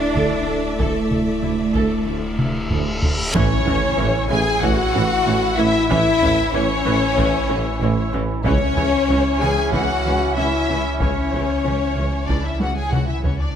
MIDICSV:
0, 0, Header, 1, 13, 480
1, 0, Start_track
1, 0, Tempo, 638298
1, 597, Time_signature, 4, 2, 24, 8
1, 10194, End_track
2, 0, Start_track
2, 0, Title_t, "Violin section"
2, 0, Program_c, 0, 48
2, 0, Note_on_c, 0, 76, 68
2, 2337, Note_off_c, 0, 76, 0
2, 2510, Note_on_c, 0, 73, 111
2, 3203, Note_off_c, 0, 73, 0
2, 3239, Note_on_c, 0, 80, 120
2, 3468, Note_on_c, 0, 78, 110
2, 3478, Note_off_c, 0, 80, 0
2, 4191, Note_on_c, 0, 76, 122
2, 4193, Note_off_c, 0, 78, 0
2, 4430, Note_off_c, 0, 76, 0
2, 4439, Note_on_c, 0, 76, 127
2, 4908, Note_off_c, 0, 76, 0
2, 4915, Note_on_c, 0, 73, 126
2, 6092, Note_off_c, 0, 73, 0
2, 6350, Note_on_c, 0, 73, 111
2, 7044, Note_off_c, 0, 73, 0
2, 7069, Note_on_c, 0, 80, 113
2, 7310, Note_on_c, 0, 78, 108
2, 7313, Note_off_c, 0, 80, 0
2, 7784, Note_off_c, 0, 78, 0
2, 7787, Note_on_c, 0, 76, 105
2, 8262, Note_off_c, 0, 76, 0
2, 8277, Note_on_c, 0, 73, 90
2, 9218, Note_off_c, 0, 73, 0
2, 9232, Note_on_c, 0, 74, 78
2, 9355, Note_off_c, 0, 74, 0
2, 9356, Note_on_c, 0, 76, 70
2, 9477, Note_off_c, 0, 76, 0
2, 9484, Note_on_c, 0, 78, 77
2, 9598, Note_off_c, 0, 78, 0
2, 9600, Note_on_c, 0, 80, 73
2, 9712, Note_on_c, 0, 78, 83
2, 9716, Note_off_c, 0, 80, 0
2, 9835, Note_off_c, 0, 78, 0
2, 9841, Note_on_c, 0, 76, 68
2, 9956, Note_on_c, 0, 73, 67
2, 9957, Note_off_c, 0, 76, 0
2, 10073, Note_on_c, 0, 74, 71
2, 10074, Note_off_c, 0, 73, 0
2, 10193, Note_off_c, 0, 74, 0
2, 10194, End_track
3, 0, Start_track
3, 0, Title_t, "French horn section"
3, 0, Program_c, 1, 60
3, 0, Note_on_c, 1, 57, 78
3, 0, Note_on_c, 1, 64, 85
3, 2251, Note_off_c, 1, 57, 0
3, 2278, Note_off_c, 1, 64, 0
3, 2508, Note_on_c, 1, 61, 114
3, 3203, Note_off_c, 1, 61, 0
3, 3233, Note_on_c, 1, 68, 101
3, 3475, Note_off_c, 1, 68, 0
3, 3477, Note_on_c, 1, 66, 99
3, 4187, Note_on_c, 1, 64, 105
3, 4197, Note_off_c, 1, 66, 0
3, 4418, Note_off_c, 1, 64, 0
3, 4427, Note_on_c, 1, 64, 122
3, 4902, Note_off_c, 1, 64, 0
3, 4919, Note_on_c, 1, 61, 101
3, 6118, Note_off_c, 1, 61, 0
3, 6355, Note_on_c, 1, 61, 115
3, 7046, Note_off_c, 1, 61, 0
3, 7071, Note_on_c, 1, 68, 91
3, 7309, Note_on_c, 1, 66, 91
3, 7314, Note_off_c, 1, 68, 0
3, 7793, Note_off_c, 1, 66, 0
3, 7803, Note_on_c, 1, 64, 79
3, 8270, Note_off_c, 1, 64, 0
3, 8281, Note_on_c, 1, 61, 92
3, 9239, Note_off_c, 1, 61, 0
3, 9247, Note_on_c, 1, 62, 67
3, 9359, Note_off_c, 1, 62, 0
3, 9375, Note_on_c, 1, 64, 61
3, 9481, Note_on_c, 1, 66, 65
3, 9486, Note_off_c, 1, 64, 0
3, 9598, Note_on_c, 1, 68, 60
3, 9599, Note_off_c, 1, 66, 0
3, 9715, Note_off_c, 1, 68, 0
3, 9724, Note_on_c, 1, 66, 60
3, 9835, Note_on_c, 1, 64, 63
3, 9840, Note_off_c, 1, 66, 0
3, 9956, Note_off_c, 1, 64, 0
3, 9964, Note_on_c, 1, 61, 55
3, 10078, Note_off_c, 1, 61, 0
3, 10085, Note_on_c, 1, 62, 67
3, 10194, Note_off_c, 1, 62, 0
3, 10194, End_track
4, 0, Start_track
4, 0, Title_t, "Violin section"
4, 0, Program_c, 2, 48
4, 0, Note_on_c, 2, 74, 75
4, 2335, Note_off_c, 2, 74, 0
4, 2519, Note_on_c, 2, 61, 98
4, 3208, Note_off_c, 2, 61, 0
4, 3241, Note_on_c, 2, 68, 108
4, 3474, Note_off_c, 2, 68, 0
4, 3478, Note_on_c, 2, 66, 111
4, 4197, Note_off_c, 2, 66, 0
4, 4199, Note_on_c, 2, 64, 97
4, 4433, Note_off_c, 2, 64, 0
4, 4442, Note_on_c, 2, 64, 124
4, 4910, Note_off_c, 2, 64, 0
4, 4917, Note_on_c, 2, 61, 114
4, 6117, Note_off_c, 2, 61, 0
4, 6354, Note_on_c, 2, 61, 111
4, 7045, Note_off_c, 2, 61, 0
4, 7078, Note_on_c, 2, 68, 91
4, 7317, Note_off_c, 2, 68, 0
4, 7317, Note_on_c, 2, 66, 92
4, 7788, Note_off_c, 2, 66, 0
4, 7796, Note_on_c, 2, 64, 78
4, 8267, Note_off_c, 2, 64, 0
4, 8272, Note_on_c, 2, 61, 85
4, 9215, Note_off_c, 2, 61, 0
4, 9237, Note_on_c, 2, 62, 75
4, 9354, Note_on_c, 2, 64, 63
4, 9357, Note_off_c, 2, 62, 0
4, 9474, Note_on_c, 2, 66, 66
4, 9475, Note_off_c, 2, 64, 0
4, 9592, Note_on_c, 2, 68, 68
4, 9595, Note_off_c, 2, 66, 0
4, 9712, Note_off_c, 2, 68, 0
4, 9715, Note_on_c, 2, 66, 66
4, 9831, Note_on_c, 2, 64, 56
4, 9836, Note_off_c, 2, 66, 0
4, 9952, Note_on_c, 2, 61, 55
4, 9954, Note_off_c, 2, 64, 0
4, 10072, Note_off_c, 2, 61, 0
4, 10073, Note_on_c, 2, 62, 58
4, 10194, Note_off_c, 2, 62, 0
4, 10194, End_track
5, 0, Start_track
5, 0, Title_t, "Viola section"
5, 0, Program_c, 3, 48
5, 114, Note_on_c, 3, 69, 61
5, 339, Note_off_c, 3, 69, 0
5, 350, Note_on_c, 3, 69, 53
5, 410, Note_off_c, 3, 69, 0
5, 592, Note_on_c, 3, 69, 77
5, 818, Note_off_c, 3, 69, 0
5, 833, Note_on_c, 3, 69, 44
5, 893, Note_off_c, 3, 69, 0
5, 1073, Note_on_c, 3, 64, 51
5, 1133, Note_off_c, 3, 64, 0
5, 1316, Note_on_c, 3, 69, 74
5, 1539, Note_off_c, 3, 69, 0
5, 1554, Note_on_c, 3, 69, 44
5, 1614, Note_off_c, 3, 69, 0
5, 1791, Note_on_c, 3, 64, 51
5, 1851, Note_off_c, 3, 64, 0
5, 2036, Note_on_c, 3, 69, 51
5, 2260, Note_off_c, 3, 69, 0
5, 2277, Note_on_c, 3, 69, 49
5, 2337, Note_off_c, 3, 69, 0
5, 2515, Note_on_c, 3, 61, 90
5, 2516, Note_on_c, 3, 52, 86
5, 2575, Note_off_c, 3, 61, 0
5, 2576, Note_off_c, 3, 52, 0
5, 2756, Note_on_c, 3, 52, 78
5, 2756, Note_on_c, 3, 61, 81
5, 2816, Note_off_c, 3, 61, 0
5, 2817, Note_off_c, 3, 52, 0
5, 2993, Note_on_c, 3, 61, 68
5, 2995, Note_on_c, 3, 52, 81
5, 3053, Note_off_c, 3, 61, 0
5, 3055, Note_off_c, 3, 52, 0
5, 3232, Note_on_c, 3, 52, 71
5, 3235, Note_on_c, 3, 61, 75
5, 3292, Note_off_c, 3, 52, 0
5, 3295, Note_off_c, 3, 61, 0
5, 3479, Note_on_c, 3, 52, 77
5, 3481, Note_on_c, 3, 61, 76
5, 3539, Note_off_c, 3, 52, 0
5, 3541, Note_off_c, 3, 61, 0
5, 3717, Note_on_c, 3, 61, 73
5, 3718, Note_on_c, 3, 52, 80
5, 3777, Note_off_c, 3, 61, 0
5, 3778, Note_off_c, 3, 52, 0
5, 3961, Note_on_c, 3, 52, 73
5, 3961, Note_on_c, 3, 61, 67
5, 4021, Note_off_c, 3, 52, 0
5, 4022, Note_off_c, 3, 61, 0
5, 4197, Note_on_c, 3, 61, 71
5, 4199, Note_on_c, 3, 52, 70
5, 4258, Note_off_c, 3, 61, 0
5, 4260, Note_off_c, 3, 52, 0
5, 4437, Note_on_c, 3, 52, 98
5, 4438, Note_on_c, 3, 61, 98
5, 4497, Note_off_c, 3, 52, 0
5, 4498, Note_off_c, 3, 61, 0
5, 4679, Note_on_c, 3, 52, 76
5, 4681, Note_on_c, 3, 61, 84
5, 4739, Note_off_c, 3, 52, 0
5, 4741, Note_off_c, 3, 61, 0
5, 4917, Note_on_c, 3, 61, 85
5, 4919, Note_on_c, 3, 52, 86
5, 4977, Note_off_c, 3, 61, 0
5, 4979, Note_off_c, 3, 52, 0
5, 5157, Note_on_c, 3, 52, 88
5, 5157, Note_on_c, 3, 61, 85
5, 5217, Note_off_c, 3, 52, 0
5, 5217, Note_off_c, 3, 61, 0
5, 5399, Note_on_c, 3, 61, 96
5, 5401, Note_on_c, 3, 52, 92
5, 5459, Note_off_c, 3, 61, 0
5, 5461, Note_off_c, 3, 52, 0
5, 5637, Note_on_c, 3, 52, 80
5, 5637, Note_on_c, 3, 61, 84
5, 5697, Note_off_c, 3, 61, 0
5, 5698, Note_off_c, 3, 52, 0
5, 5877, Note_on_c, 3, 52, 73
5, 5877, Note_on_c, 3, 61, 67
5, 5937, Note_off_c, 3, 52, 0
5, 5937, Note_off_c, 3, 61, 0
5, 6119, Note_on_c, 3, 61, 71
5, 6121, Note_on_c, 3, 52, 72
5, 6179, Note_off_c, 3, 61, 0
5, 6181, Note_off_c, 3, 52, 0
5, 6354, Note_on_c, 3, 52, 92
5, 6356, Note_on_c, 3, 61, 89
5, 6414, Note_off_c, 3, 52, 0
5, 6416, Note_off_c, 3, 61, 0
5, 6595, Note_on_c, 3, 52, 74
5, 6595, Note_on_c, 3, 61, 75
5, 6655, Note_off_c, 3, 52, 0
5, 6655, Note_off_c, 3, 61, 0
5, 6833, Note_on_c, 3, 52, 70
5, 6834, Note_on_c, 3, 61, 67
5, 6893, Note_off_c, 3, 52, 0
5, 6895, Note_off_c, 3, 61, 0
5, 7075, Note_on_c, 3, 52, 70
5, 7076, Note_on_c, 3, 61, 72
5, 7135, Note_off_c, 3, 52, 0
5, 7136, Note_off_c, 3, 61, 0
5, 7314, Note_on_c, 3, 52, 78
5, 7316, Note_on_c, 3, 61, 67
5, 7374, Note_off_c, 3, 52, 0
5, 7376, Note_off_c, 3, 61, 0
5, 7554, Note_on_c, 3, 52, 66
5, 7555, Note_on_c, 3, 61, 65
5, 7614, Note_off_c, 3, 52, 0
5, 7615, Note_off_c, 3, 61, 0
5, 7797, Note_on_c, 3, 52, 57
5, 7797, Note_on_c, 3, 61, 57
5, 7857, Note_off_c, 3, 52, 0
5, 7857, Note_off_c, 3, 61, 0
5, 8037, Note_on_c, 3, 61, 51
5, 8038, Note_on_c, 3, 52, 53
5, 8097, Note_off_c, 3, 61, 0
5, 8099, Note_off_c, 3, 52, 0
5, 8277, Note_on_c, 3, 61, 66
5, 8280, Note_on_c, 3, 52, 70
5, 8337, Note_off_c, 3, 61, 0
5, 8340, Note_off_c, 3, 52, 0
5, 8522, Note_on_c, 3, 52, 53
5, 8523, Note_on_c, 3, 61, 57
5, 8582, Note_off_c, 3, 52, 0
5, 8583, Note_off_c, 3, 61, 0
5, 8757, Note_on_c, 3, 61, 56
5, 8758, Note_on_c, 3, 52, 53
5, 8818, Note_off_c, 3, 61, 0
5, 8819, Note_off_c, 3, 52, 0
5, 9000, Note_on_c, 3, 61, 53
5, 9001, Note_on_c, 3, 52, 52
5, 9060, Note_off_c, 3, 61, 0
5, 9061, Note_off_c, 3, 52, 0
5, 9240, Note_on_c, 3, 52, 61
5, 9241, Note_on_c, 3, 61, 56
5, 9300, Note_off_c, 3, 52, 0
5, 9301, Note_off_c, 3, 61, 0
5, 9481, Note_on_c, 3, 52, 47
5, 9481, Note_on_c, 3, 61, 51
5, 9541, Note_off_c, 3, 52, 0
5, 9541, Note_off_c, 3, 61, 0
5, 9720, Note_on_c, 3, 52, 46
5, 9720, Note_on_c, 3, 61, 48
5, 9780, Note_off_c, 3, 52, 0
5, 9780, Note_off_c, 3, 61, 0
5, 9958, Note_on_c, 3, 52, 46
5, 9958, Note_on_c, 3, 61, 41
5, 10018, Note_off_c, 3, 52, 0
5, 10019, Note_off_c, 3, 61, 0
5, 10194, End_track
6, 0, Start_track
6, 0, Title_t, "Trombone section"
6, 0, Program_c, 4, 61
6, 2510, Note_on_c, 4, 52, 86
6, 2510, Note_on_c, 4, 64, 83
6, 6323, Note_off_c, 4, 52, 0
6, 6323, Note_off_c, 4, 64, 0
6, 6347, Note_on_c, 4, 52, 98
6, 6350, Note_on_c, 4, 61, 96
6, 9922, Note_off_c, 4, 52, 0
6, 9953, Note_off_c, 4, 61, 0
6, 10194, End_track
7, 0, Start_track
7, 0, Title_t, "Cello section"
7, 0, Program_c, 5, 48
7, 0, Note_on_c, 5, 62, 101
7, 594, Note_off_c, 5, 62, 0
7, 595, Note_on_c, 5, 57, 85
7, 2246, Note_off_c, 5, 57, 0
7, 2515, Note_on_c, 5, 45, 93
7, 2575, Note_off_c, 5, 45, 0
7, 2757, Note_on_c, 5, 45, 79
7, 2817, Note_off_c, 5, 45, 0
7, 2997, Note_on_c, 5, 45, 92
7, 3058, Note_off_c, 5, 45, 0
7, 3241, Note_on_c, 5, 45, 78
7, 3302, Note_off_c, 5, 45, 0
7, 3482, Note_on_c, 5, 45, 81
7, 3542, Note_off_c, 5, 45, 0
7, 3724, Note_on_c, 5, 45, 85
7, 3784, Note_off_c, 5, 45, 0
7, 3961, Note_on_c, 5, 45, 97
7, 4021, Note_off_c, 5, 45, 0
7, 4198, Note_on_c, 5, 45, 100
7, 4258, Note_off_c, 5, 45, 0
7, 4440, Note_on_c, 5, 45, 90
7, 4500, Note_off_c, 5, 45, 0
7, 4683, Note_on_c, 5, 45, 85
7, 4743, Note_off_c, 5, 45, 0
7, 4921, Note_on_c, 5, 45, 97
7, 4981, Note_off_c, 5, 45, 0
7, 5157, Note_on_c, 5, 45, 90
7, 5217, Note_off_c, 5, 45, 0
7, 5396, Note_on_c, 5, 45, 104
7, 5456, Note_off_c, 5, 45, 0
7, 5631, Note_on_c, 5, 45, 101
7, 5691, Note_off_c, 5, 45, 0
7, 5875, Note_on_c, 5, 45, 100
7, 5935, Note_off_c, 5, 45, 0
7, 6117, Note_on_c, 5, 45, 98
7, 6177, Note_off_c, 5, 45, 0
7, 6356, Note_on_c, 5, 49, 95
7, 6416, Note_off_c, 5, 49, 0
7, 6600, Note_on_c, 5, 49, 77
7, 6660, Note_off_c, 5, 49, 0
7, 6837, Note_on_c, 5, 49, 84
7, 6897, Note_off_c, 5, 49, 0
7, 7080, Note_on_c, 5, 49, 76
7, 7140, Note_off_c, 5, 49, 0
7, 7317, Note_on_c, 5, 49, 74
7, 7377, Note_off_c, 5, 49, 0
7, 7562, Note_on_c, 5, 49, 71
7, 7622, Note_off_c, 5, 49, 0
7, 7797, Note_on_c, 5, 49, 78
7, 7858, Note_off_c, 5, 49, 0
7, 8043, Note_on_c, 5, 49, 72
7, 8103, Note_off_c, 5, 49, 0
7, 8285, Note_on_c, 5, 49, 71
7, 8345, Note_off_c, 5, 49, 0
7, 8523, Note_on_c, 5, 49, 60
7, 8583, Note_off_c, 5, 49, 0
7, 8763, Note_on_c, 5, 49, 59
7, 8824, Note_off_c, 5, 49, 0
7, 9003, Note_on_c, 5, 49, 51
7, 9063, Note_off_c, 5, 49, 0
7, 9244, Note_on_c, 5, 49, 63
7, 9304, Note_off_c, 5, 49, 0
7, 9484, Note_on_c, 5, 49, 60
7, 9544, Note_off_c, 5, 49, 0
7, 9721, Note_on_c, 5, 49, 58
7, 9781, Note_off_c, 5, 49, 0
7, 9962, Note_on_c, 5, 49, 61
7, 10023, Note_off_c, 5, 49, 0
7, 10194, End_track
8, 0, Start_track
8, 0, Title_t, "Double bass section"
8, 0, Program_c, 6, 48
8, 114, Note_on_c, 6, 38, 80
8, 174, Note_off_c, 6, 38, 0
8, 354, Note_on_c, 6, 38, 55
8, 414, Note_off_c, 6, 38, 0
8, 591, Note_on_c, 6, 38, 75
8, 651, Note_off_c, 6, 38, 0
8, 834, Note_on_c, 6, 38, 49
8, 894, Note_off_c, 6, 38, 0
8, 1072, Note_on_c, 6, 38, 51
8, 1133, Note_off_c, 6, 38, 0
8, 1313, Note_on_c, 6, 38, 76
8, 1373, Note_off_c, 6, 38, 0
8, 1553, Note_on_c, 6, 38, 46
8, 1613, Note_off_c, 6, 38, 0
8, 1792, Note_on_c, 6, 38, 51
8, 1852, Note_off_c, 6, 38, 0
8, 2033, Note_on_c, 6, 38, 70
8, 2094, Note_off_c, 6, 38, 0
8, 2272, Note_on_c, 6, 38, 44
8, 2332, Note_off_c, 6, 38, 0
8, 2513, Note_on_c, 6, 33, 108
8, 2574, Note_off_c, 6, 33, 0
8, 2757, Note_on_c, 6, 33, 81
8, 2817, Note_off_c, 6, 33, 0
8, 2997, Note_on_c, 6, 33, 87
8, 3057, Note_off_c, 6, 33, 0
8, 3235, Note_on_c, 6, 33, 84
8, 3295, Note_off_c, 6, 33, 0
8, 3475, Note_on_c, 6, 33, 84
8, 3536, Note_off_c, 6, 33, 0
8, 3717, Note_on_c, 6, 33, 92
8, 3777, Note_off_c, 6, 33, 0
8, 3958, Note_on_c, 6, 33, 83
8, 4018, Note_off_c, 6, 33, 0
8, 4196, Note_on_c, 6, 33, 93
8, 4257, Note_off_c, 6, 33, 0
8, 4437, Note_on_c, 6, 33, 107
8, 4497, Note_off_c, 6, 33, 0
8, 4677, Note_on_c, 6, 33, 90
8, 4737, Note_off_c, 6, 33, 0
8, 4915, Note_on_c, 6, 33, 91
8, 4975, Note_off_c, 6, 33, 0
8, 5152, Note_on_c, 6, 33, 89
8, 5213, Note_off_c, 6, 33, 0
8, 5389, Note_on_c, 6, 33, 97
8, 5450, Note_off_c, 6, 33, 0
8, 5631, Note_on_c, 6, 33, 91
8, 5692, Note_off_c, 6, 33, 0
8, 5870, Note_on_c, 6, 33, 95
8, 5930, Note_off_c, 6, 33, 0
8, 6111, Note_on_c, 6, 33, 80
8, 6171, Note_off_c, 6, 33, 0
8, 6351, Note_on_c, 6, 37, 99
8, 6411, Note_off_c, 6, 37, 0
8, 6593, Note_on_c, 6, 37, 81
8, 6653, Note_off_c, 6, 37, 0
8, 6834, Note_on_c, 6, 37, 83
8, 6894, Note_off_c, 6, 37, 0
8, 7070, Note_on_c, 6, 37, 74
8, 7130, Note_off_c, 6, 37, 0
8, 7311, Note_on_c, 6, 37, 82
8, 7371, Note_off_c, 6, 37, 0
8, 7550, Note_on_c, 6, 37, 74
8, 7610, Note_off_c, 6, 37, 0
8, 7791, Note_on_c, 6, 37, 66
8, 7852, Note_off_c, 6, 37, 0
8, 8035, Note_on_c, 6, 37, 61
8, 8095, Note_off_c, 6, 37, 0
8, 8276, Note_on_c, 6, 37, 66
8, 8336, Note_off_c, 6, 37, 0
8, 8518, Note_on_c, 6, 37, 60
8, 8578, Note_off_c, 6, 37, 0
8, 8760, Note_on_c, 6, 37, 57
8, 8820, Note_off_c, 6, 37, 0
8, 8997, Note_on_c, 6, 37, 59
8, 9057, Note_off_c, 6, 37, 0
8, 9240, Note_on_c, 6, 37, 57
8, 9300, Note_off_c, 6, 37, 0
8, 9476, Note_on_c, 6, 37, 55
8, 9537, Note_off_c, 6, 37, 0
8, 9720, Note_on_c, 6, 37, 58
8, 9780, Note_off_c, 6, 37, 0
8, 9957, Note_on_c, 6, 37, 53
8, 10017, Note_off_c, 6, 37, 0
8, 10194, End_track
9, 0, Start_track
9, 0, Title_t, "Tuba"
9, 0, Program_c, 7, 58
9, 119, Note_on_c, 7, 38, 70
9, 215, Note_off_c, 7, 38, 0
9, 359, Note_on_c, 7, 38, 53
9, 455, Note_off_c, 7, 38, 0
9, 598, Note_on_c, 7, 38, 72
9, 694, Note_off_c, 7, 38, 0
9, 837, Note_on_c, 7, 38, 47
9, 933, Note_off_c, 7, 38, 0
9, 1076, Note_on_c, 7, 38, 47
9, 1172, Note_off_c, 7, 38, 0
9, 1314, Note_on_c, 7, 38, 67
9, 1411, Note_off_c, 7, 38, 0
9, 1556, Note_on_c, 7, 38, 52
9, 1652, Note_off_c, 7, 38, 0
9, 1794, Note_on_c, 7, 38, 47
9, 1891, Note_off_c, 7, 38, 0
9, 2036, Note_on_c, 7, 38, 72
9, 2132, Note_off_c, 7, 38, 0
9, 2279, Note_on_c, 7, 38, 55
9, 2374, Note_off_c, 7, 38, 0
9, 2518, Note_on_c, 7, 33, 93
9, 2614, Note_off_c, 7, 33, 0
9, 2762, Note_on_c, 7, 33, 84
9, 2857, Note_off_c, 7, 33, 0
9, 3005, Note_on_c, 7, 33, 86
9, 3100, Note_off_c, 7, 33, 0
9, 3246, Note_on_c, 7, 33, 90
9, 3341, Note_off_c, 7, 33, 0
9, 3482, Note_on_c, 7, 33, 94
9, 3577, Note_off_c, 7, 33, 0
9, 3726, Note_on_c, 7, 33, 91
9, 3820, Note_off_c, 7, 33, 0
9, 3965, Note_on_c, 7, 33, 89
9, 4060, Note_off_c, 7, 33, 0
9, 4204, Note_on_c, 7, 33, 95
9, 4299, Note_off_c, 7, 33, 0
9, 4450, Note_on_c, 7, 33, 97
9, 4543, Note_off_c, 7, 33, 0
9, 4686, Note_on_c, 7, 33, 93
9, 4780, Note_off_c, 7, 33, 0
9, 4925, Note_on_c, 7, 33, 88
9, 5020, Note_off_c, 7, 33, 0
9, 5163, Note_on_c, 7, 33, 92
9, 5258, Note_off_c, 7, 33, 0
9, 5404, Note_on_c, 7, 33, 96
9, 5498, Note_off_c, 7, 33, 0
9, 5645, Note_on_c, 7, 33, 91
9, 5739, Note_off_c, 7, 33, 0
9, 5881, Note_on_c, 7, 33, 100
9, 5976, Note_off_c, 7, 33, 0
9, 6126, Note_on_c, 7, 33, 89
9, 6220, Note_off_c, 7, 33, 0
9, 6360, Note_on_c, 7, 37, 101
9, 6456, Note_off_c, 7, 37, 0
9, 6604, Note_on_c, 7, 37, 85
9, 6698, Note_off_c, 7, 37, 0
9, 6846, Note_on_c, 7, 37, 83
9, 6940, Note_off_c, 7, 37, 0
9, 7083, Note_on_c, 7, 37, 78
9, 7178, Note_off_c, 7, 37, 0
9, 7324, Note_on_c, 7, 37, 79
9, 7418, Note_off_c, 7, 37, 0
9, 7564, Note_on_c, 7, 37, 74
9, 7658, Note_off_c, 7, 37, 0
9, 7807, Note_on_c, 7, 37, 74
9, 7901, Note_off_c, 7, 37, 0
9, 8044, Note_on_c, 7, 37, 65
9, 8138, Note_off_c, 7, 37, 0
9, 8279, Note_on_c, 7, 37, 70
9, 8374, Note_off_c, 7, 37, 0
9, 8520, Note_on_c, 7, 37, 59
9, 8616, Note_off_c, 7, 37, 0
9, 8757, Note_on_c, 7, 37, 59
9, 8853, Note_off_c, 7, 37, 0
9, 8997, Note_on_c, 7, 37, 56
9, 9093, Note_off_c, 7, 37, 0
9, 9236, Note_on_c, 7, 37, 62
9, 9332, Note_off_c, 7, 37, 0
9, 9474, Note_on_c, 7, 37, 54
9, 9571, Note_off_c, 7, 37, 0
9, 9719, Note_on_c, 7, 37, 58
9, 9814, Note_off_c, 7, 37, 0
9, 9958, Note_on_c, 7, 37, 54
9, 10054, Note_off_c, 7, 37, 0
9, 10194, End_track
10, 0, Start_track
10, 0, Title_t, "Sub bass"
10, 0, Program_c, 8, 38
10, 0, Note_on_c, 8, 26, 68
10, 2512, Note_off_c, 8, 26, 0
10, 2516, Note_on_c, 8, 33, 86
10, 6356, Note_on_c, 8, 37, 78
10, 6368, Note_off_c, 8, 33, 0
10, 10194, Note_off_c, 8, 37, 0
10, 10194, End_track
11, 0, Start_track
11, 0, Title_t, "Impact"
11, 0, Program_c, 10, 103
11, 2519, Note_on_c, 10, 60, 86
11, 4438, Note_off_c, 10, 60, 0
11, 10194, End_track
12, 0, Start_track
12, 0, Title_t, "Reverse cymbal"
12, 0, Program_c, 11, 119
12, 595, Note_on_c, 11, 60, 59
12, 2516, Note_off_c, 11, 60, 0
12, 10194, End_track
13, 0, Start_track
13, 0, Title_t, "Taiko and cinematic ensemble drums"
13, 120, Note_on_c, 9, 41, 72
13, 195, Note_off_c, 9, 41, 0
13, 596, Note_on_c, 9, 41, 107
13, 671, Note_off_c, 9, 41, 0
13, 834, Note_on_c, 9, 47, 48
13, 909, Note_off_c, 9, 47, 0
13, 1074, Note_on_c, 9, 47, 60
13, 1149, Note_off_c, 9, 47, 0
13, 1314, Note_on_c, 9, 41, 73
13, 1389, Note_off_c, 9, 41, 0
13, 1795, Note_on_c, 9, 47, 81
13, 1870, Note_off_c, 9, 47, 0
13, 2035, Note_on_c, 9, 45, 74
13, 2110, Note_off_c, 9, 45, 0
13, 2275, Note_on_c, 9, 43, 91
13, 2350, Note_off_c, 9, 43, 0
13, 2516, Note_on_c, 9, 41, 120
13, 2591, Note_off_c, 9, 41, 0
13, 2758, Note_on_c, 9, 43, 68
13, 2833, Note_off_c, 9, 43, 0
13, 3240, Note_on_c, 9, 37, 45
13, 3315, Note_off_c, 9, 37, 0
13, 3477, Note_on_c, 9, 41, 91
13, 3552, Note_off_c, 9, 41, 0
13, 4441, Note_on_c, 9, 41, 113
13, 4516, Note_off_c, 9, 41, 0
13, 4679, Note_on_c, 9, 43, 65
13, 4754, Note_off_c, 9, 43, 0
13, 5398, Note_on_c, 9, 41, 100
13, 5473, Note_off_c, 9, 41, 0
13, 6118, Note_on_c, 9, 37, 46
13, 6193, Note_off_c, 9, 37, 0
13, 6356, Note_on_c, 9, 41, 119
13, 6431, Note_off_c, 9, 41, 0
13, 6597, Note_on_c, 9, 43, 64
13, 6672, Note_off_c, 9, 43, 0
13, 7314, Note_on_c, 9, 41, 79
13, 7389, Note_off_c, 9, 41, 0
13, 8276, Note_on_c, 9, 41, 110
13, 8351, Note_off_c, 9, 41, 0
13, 8516, Note_on_c, 9, 43, 53
13, 8592, Note_off_c, 9, 43, 0
13, 9238, Note_on_c, 9, 41, 76
13, 9314, Note_off_c, 9, 41, 0
13, 9477, Note_on_c, 9, 48, 83
13, 9552, Note_off_c, 9, 48, 0
13, 9719, Note_on_c, 9, 47, 82
13, 9794, Note_off_c, 9, 47, 0
13, 9958, Note_on_c, 9, 43, 94
13, 10034, Note_off_c, 9, 43, 0
13, 10194, End_track
0, 0, End_of_file